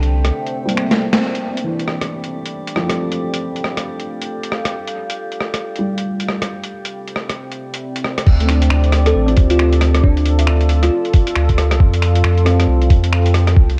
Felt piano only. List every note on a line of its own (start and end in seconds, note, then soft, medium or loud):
0.00 0.51 D3 medium
0.66 1.39 G3 medium
0.71 1.42 A#3 medium
1.64 2.66 E3 medium
2.76 3.78 F3 medium
2.81 3.81 A3 soft
2.86 3.83 C4 soft
5.79 6.68 G3 medium
8.40 9.41 A3 medium
8.45 9.25 C4 medium
8.50 9.46 D4 medium
9.26 10.27 C4 medium
9.31 10.29 F4 medium
9.36 10.32 G4 medium
10.39 11.39 E5 medium
12.45 13.47 C4 medium